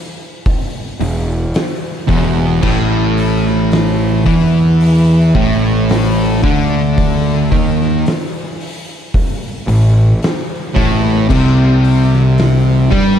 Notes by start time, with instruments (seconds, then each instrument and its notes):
0.46 kick, open hi-hat
1.00 picked electric bass E1, distorted electric guitar E2, open hi-hat
1.54 snare, open hi-hat
2.08 picked electric bass E1, distorted electric guitar E2, kick, open hi-hat
2.62 picked electric bass A1, distorted electric guitar A2, kick, crash
3.17 open hi-hat
3.46 snare
3.71 snare, open hi-hat
4.26 picked electric bass E2, distorted electric guitar E3, kick, open hi-hat
4.81 open hi-hat
5.35 picked electric bass A1, distorted electric guitar A2, kick, open hi-hat
5.89 snare, open hi-hat
6.43 picked electric bass D2, distorted electric guitar D3, kick, open hi-hat
6.98 kick, open hi-hat
7.52 picked electric bass D#2, distorted electric guitar D#3, kick, open hi-hat
7.81 snare
8.06 snare, open hi-hat
8.60 open hi-hat
9.14 kick, open hi-hat
9.67 picked electric bass A1, distorted electric guitar A2, open hi-hat
10.22 snare, open hi-hat
10.75 picked electric bass A1, distorted electric guitar A2, kick, open hi-hat
11.29 picked electric bass C2, distorted electric guitar C3, kick, crash
11.84 open hi-hat
12.13 snare
12.38 snare, open hi-hat
12.91 picked electric bass G2, distorted electric guitar G3, kick, open hi-hat